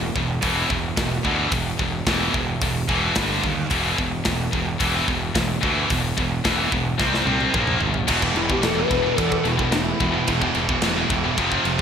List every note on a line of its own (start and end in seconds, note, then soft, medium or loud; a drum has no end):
0.00 0.13 E2 medium
0.00 0.13 B2 medium
0.16 0.37 E1 medium
0.16 0.40 E2 medium
0.16 0.40 B2 medium
0.16 kick medium
0.41 0.64 E1 medium
0.41 0.68 E2 medium
0.41 0.68 B2 medium
0.41 0.68 E3 loud
0.41 kick loud
0.41 open hi-hat medium
0.69 0.91 E1 medium
0.69 0.94 E2 medium
0.69 0.94 B2 medium
0.69 kick medium
0.96 1.18 E1 medium
0.96 1.21 E2 medium
0.96 1.22 B2 medium
0.96 kick loud
0.96 snare loud
0.96 open hi-hat medium
1.24 1.46 D2 medium
1.24 1.50 E2 medium
1.24 1.50 B2 medium
1.24 1.51 E3 loud
1.24 kick medium
1.51 1.73 E1 medium
1.51 1.76 E2 medium
1.51 1.76 B2 medium
1.51 kick loud
1.51 open hi-hat medium
1.79 2.01 E1 medium
1.79 2.04 E2 medium
1.79 2.04 B2 medium
1.79 kick medium
2.06 2.28 E1 medium
2.06 2.32 E2 medium
2.06 2.33 B2 medium
2.06 2.33 E3 medium
2.06 kick medium
2.06 snare loud
2.06 open hi-hat medium
2.34 2.55 E1 loud
2.34 2.59 E2 medium
2.34 2.59 B2 medium
2.34 kick medium
2.61 2.83 E1 medium
2.61 2.86 E2 medium
2.61 2.86 B2 medium
2.61 kick loud
2.61 open hi-hat medium
2.88 3.10 E1 medium
2.88 3.14 E2 medium
2.88 3.15 B2 medium
2.88 3.15 E3 medium
2.88 kick medium
3.15 3.38 G1 loud
3.15 3.42 G2 medium
3.15 3.42 D3 medium
3.15 3.42 G3 loud
3.15 kick loud
3.15 snare loud
3.15 open hi-hat medium
3.43 3.65 D#2 medium
3.43 3.68 G2 medium
3.43 3.68 D3 medium
3.43 kick medium
3.70 3.92 E1 medium
3.70 3.96 E2 medium
3.70 3.96 B2 medium
3.70 3.97 E3 loud
3.70 kick loud
3.70 open hi-hat medium
3.98 4.20 E1 medium
3.98 4.23 E2 medium
3.98 4.23 B2 medium
3.98 kick medium
4.25 4.47 E1 medium
4.25 4.50 E2 medium
4.25 4.50 B2 medium
4.25 kick loud
4.25 snare loud
4.25 open hi-hat medium
4.53 4.74 E1 medium
4.53 4.77 E2 medium
4.53 4.78 B2 medium
4.53 kick medium
4.80 5.01 E1 medium
4.80 5.06 E2 medium
4.80 5.06 B2 medium
4.80 5.06 E3 loud
4.80 kick loud
4.80 open hi-hat medium
5.08 5.29 E1 medium
5.08 5.33 E2 medium
5.08 5.33 B2 medium
5.08 kick medium
5.35 5.56 E1 medium
5.35 5.59 E2 medium
5.35 5.60 B2 medium
5.35 kick loud
5.35 snare loud
5.35 open hi-hat medium
5.63 5.84 D2 medium
5.63 5.88 E2 medium
5.63 5.89 B2 loud
5.63 5.89 E3 loud
5.63 kick medium
5.90 6.11 E1 medium
5.90 6.15 E2 medium
5.90 6.15 B2 medium
5.90 kick loud
5.90 open hi-hat medium
6.17 6.39 E1 medium
6.17 6.42 E2 medium
6.17 6.42 B2 medium
6.17 kick medium
6.44 6.66 E1 medium
6.44 6.70 E2 medium
6.44 6.70 B2 medium
6.44 6.71 E3 loud
6.44 kick loud
6.44 snare loud
6.44 open hi-hat medium
6.72 6.93 E1 medium
6.72 6.97 E2 medium
6.72 6.97 B2 medium
6.72 kick medium
7.00 7.21 C2 medium
7.00 7.24 C3 medium
7.00 7.25 G3 medium
7.00 7.26 C4 loud
7.00 kick loud
7.00 snare medium
7.14 snare medium
7.25 7.47 C2 medium
7.25 7.52 C3 medium
7.25 7.52 G3 medium
7.25 7.53 C4 medium
7.25 high tom medium
7.41 high tom medium
7.53 7.75 A#1 medium
7.53 7.79 A#2 medium
7.53 7.80 F3 loud
7.53 7.80 A#3 medium
7.53 kick loud
7.53 mid tom medium
7.67 mid tom medium
7.80 8.02 G1 medium
7.80 8.06 A#2 medium
7.80 8.06 F3 medium
7.80 floor tom medium
7.94 floor tom medium
8.08 8.28 E1 medium
8.08 8.20 E2 medium
8.08 8.20 B2 medium
8.08 8.21 E3 medium
8.08 kick loud
8.08 crash loud
8.08 crash medium
8.21 8.36 E2 medium
8.21 8.36 B2 medium
8.21 kick medium
8.35 8.55 E1 medium
8.35 8.50 E2 medium
8.35 8.50 B2 medium
8.35 8.50 E4 medium
8.35 crash soft
8.50 8.64 E2 medium
8.50 8.64 B2 medium
8.50 8.65 G4 medium
8.50 kick medium
8.63 8.83 E1 medium
8.63 8.78 E2 medium
8.63 8.77 B2 medium
8.63 8.78 A4 medium
8.63 snare loud
8.63 crash medium
8.75 8.88 E2 medium
8.75 8.90 B2 medium
8.75 9.19 B4 loud
8.79 8.90 E2 medium
8.91 9.10 E1 medium
8.91 9.05 E2 medium
8.91 9.05 B2 medium
8.91 kick medium
8.91 crash medium
9.06 9.18 E2 medium
9.06 9.18 B2 medium
9.18 9.38 E2 medium
9.18 9.43 E2 medium
9.18 9.44 B2 medium
9.18 9.31 A4 loud
9.18 kick loud
9.18 crash medium
9.32 9.46 A4 medium
9.32 kick medium
9.45 9.65 E1 medium
9.45 9.58 E2 medium
9.45 9.58 B2 medium
9.45 9.73 E4 medium
9.45 crash medium
9.59 9.72 E2 medium
9.59 9.72 B2 medium
9.59 kick medium
9.72 9.92 E1 medium
9.72 9.98 E2 medium
9.72 9.98 B2 medium
9.72 10.27 E4 medium
9.72 snare loud
9.72 crash medium
10.00 10.20 E1 medium
10.00 10.13 E2 medium
10.00 10.13 B2 medium
10.00 kick medium
10.00 crash medium
10.14 10.26 E2 medium
10.14 10.27 B2 medium
10.27 10.48 E1 loud
10.27 10.40 E2 medium
10.27 10.40 B2 medium
10.27 11.37 E3 loud
10.27 kick loud
10.27 crash medium
10.41 10.54 E2 medium
10.41 10.54 B2 medium
10.41 kick medium
10.55 10.75 E1 loud
10.55 10.68 E2 medium
10.55 10.68 B2 medium
10.55 crash medium
10.69 10.82 E2 medium
10.69 10.83 B2 medium
10.69 kick medium
10.82 11.03 E1 medium
10.82 10.95 E2 medium
10.82 10.94 B2 medium
10.82 snare loud
10.82 crash medium
10.96 11.10 E2 medium
10.96 11.09 B2 medium
11.10 11.29 E1 loud
11.10 11.23 E2 medium
11.10 11.23 B2 medium
11.10 kick medium
11.10 crash medium
11.24 11.36 E2 medium
11.24 11.38 B2 medium
11.37 11.57 F1 medium
11.37 11.63 F2 medium
11.37 11.63 C3 medium
11.37 11.64 F3 loud
11.37 kick loud
11.37 crash medium
11.52 kick medium
11.64 11.82 F1 medium
11.64 11.77 F2 medium
11.64 11.77 C3 medium
11.64 crash medium
11.78 11.82 F2 medium
11.78 11.82 C3 loud